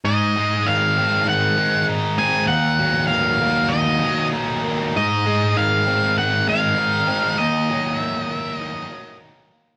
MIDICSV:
0, 0, Header, 1, 3, 480
1, 0, Start_track
1, 0, Tempo, 610376
1, 41, Time_signature, 4, 2, 24, 8
1, 7681, End_track
2, 0, Start_track
2, 0, Title_t, "Lead electric guitar"
2, 0, Program_c, 0, 29
2, 41, Note_on_c, 0, 75, 85
2, 523, Note_on_c, 0, 77, 88
2, 534, Note_off_c, 0, 75, 0
2, 1008, Note_off_c, 0, 77, 0
2, 1011, Note_on_c, 0, 78, 87
2, 1452, Note_off_c, 0, 78, 0
2, 1720, Note_on_c, 0, 80, 104
2, 1942, Note_off_c, 0, 80, 0
2, 1945, Note_on_c, 0, 78, 98
2, 2411, Note_off_c, 0, 78, 0
2, 2414, Note_on_c, 0, 77, 83
2, 2899, Note_on_c, 0, 75, 80
2, 2920, Note_off_c, 0, 77, 0
2, 3357, Note_off_c, 0, 75, 0
2, 3907, Note_on_c, 0, 75, 101
2, 4381, Note_on_c, 0, 77, 101
2, 4387, Note_off_c, 0, 75, 0
2, 4856, Note_off_c, 0, 77, 0
2, 4859, Note_on_c, 0, 78, 100
2, 5096, Note_off_c, 0, 78, 0
2, 5102, Note_on_c, 0, 77, 103
2, 5804, Note_on_c, 0, 75, 95
2, 5832, Note_off_c, 0, 77, 0
2, 6307, Note_off_c, 0, 75, 0
2, 6307, Note_on_c, 0, 76, 95
2, 6441, Note_off_c, 0, 76, 0
2, 6441, Note_on_c, 0, 75, 95
2, 6582, Note_off_c, 0, 75, 0
2, 6582, Note_on_c, 0, 76, 95
2, 6716, Note_off_c, 0, 76, 0
2, 6716, Note_on_c, 0, 75, 95
2, 7211, Note_off_c, 0, 75, 0
2, 7681, End_track
3, 0, Start_track
3, 0, Title_t, "Overdriven electric guitar"
3, 0, Program_c, 1, 29
3, 39, Note_on_c, 1, 44, 74
3, 287, Note_on_c, 1, 56, 67
3, 518, Note_on_c, 1, 51, 66
3, 768, Note_on_c, 1, 60, 60
3, 980, Note_off_c, 1, 51, 0
3, 989, Note_on_c, 1, 51, 70
3, 1230, Note_off_c, 1, 56, 0
3, 1237, Note_off_c, 1, 44, 0
3, 1239, Note_on_c, 1, 56, 70
3, 1483, Note_on_c, 1, 63, 72
3, 1709, Note_off_c, 1, 60, 0
3, 1718, Note_on_c, 1, 60, 71
3, 1949, Note_on_c, 1, 39, 77
3, 1952, Note_off_c, 1, 51, 0
3, 1957, Note_off_c, 1, 60, 0
3, 1958, Note_off_c, 1, 56, 0
3, 2197, Note_on_c, 1, 54, 68
3, 2441, Note_on_c, 1, 51, 57
3, 2681, Note_on_c, 1, 58, 62
3, 2914, Note_off_c, 1, 51, 0
3, 2924, Note_on_c, 1, 51, 71
3, 3153, Note_off_c, 1, 39, 0
3, 3157, Note_off_c, 1, 54, 0
3, 3167, Note_on_c, 1, 54, 70
3, 3404, Note_off_c, 1, 63, 0
3, 3407, Note_on_c, 1, 63, 80
3, 3636, Note_off_c, 1, 58, 0
3, 3645, Note_on_c, 1, 58, 72
3, 3881, Note_off_c, 1, 51, 0
3, 3881, Note_off_c, 1, 58, 0
3, 3882, Note_off_c, 1, 54, 0
3, 3890, Note_on_c, 1, 44, 80
3, 4133, Note_on_c, 1, 56, 69
3, 4373, Note_on_c, 1, 51, 63
3, 4611, Note_on_c, 1, 60, 63
3, 4853, Note_off_c, 1, 51, 0
3, 4863, Note_on_c, 1, 51, 75
3, 5085, Note_off_c, 1, 44, 0
3, 5085, Note_off_c, 1, 56, 0
3, 5095, Note_on_c, 1, 56, 65
3, 5331, Note_off_c, 1, 63, 0
3, 5334, Note_on_c, 1, 63, 78
3, 5554, Note_off_c, 1, 60, 0
3, 5563, Note_on_c, 1, 60, 73
3, 5802, Note_off_c, 1, 60, 0
3, 5808, Note_off_c, 1, 56, 0
3, 5812, Note_off_c, 1, 51, 0
3, 5817, Note_on_c, 1, 39, 76
3, 6049, Note_on_c, 1, 54, 63
3, 6285, Note_on_c, 1, 51, 66
3, 6532, Note_on_c, 1, 58, 65
3, 6761, Note_off_c, 1, 51, 0
3, 6770, Note_on_c, 1, 51, 69
3, 6996, Note_off_c, 1, 54, 0
3, 7005, Note_on_c, 1, 54, 70
3, 7009, Note_off_c, 1, 39, 0
3, 7242, Note_off_c, 1, 63, 0
3, 7245, Note_on_c, 1, 63, 69
3, 7477, Note_off_c, 1, 58, 0
3, 7487, Note_on_c, 1, 58, 76
3, 7681, Note_off_c, 1, 51, 0
3, 7681, Note_off_c, 1, 54, 0
3, 7681, Note_off_c, 1, 58, 0
3, 7681, Note_off_c, 1, 63, 0
3, 7681, End_track
0, 0, End_of_file